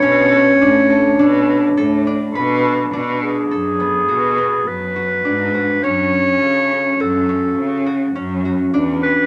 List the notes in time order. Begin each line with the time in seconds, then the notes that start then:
Already playing: B3 A4 B4 C#5
0.02 B2 C#4
0.32 A4
0.60 A2 D4
0.90 A4
1.19 B2 D4
1.77 A2 A4
2.07 D4
2.35 B2 B4
2.93 B2 D4
3.22 G#4
3.51 F#2 A4
3.80 B3
4.09 B2 F#4
4.38 B3
4.67 F#2 B4
4.96 F#4
5.25 G#2 D4
5.54 F#4
5.83 F#2 C#4 C#5
6.41 C#3 A4
6.71 C#4
6.99 F#2 F#4 A4
7.29 C#4
7.57 C#3
7.86 F#4
8.15 F#2 C#4
8.45 F#4
8.74 E2 D4
9.03 B4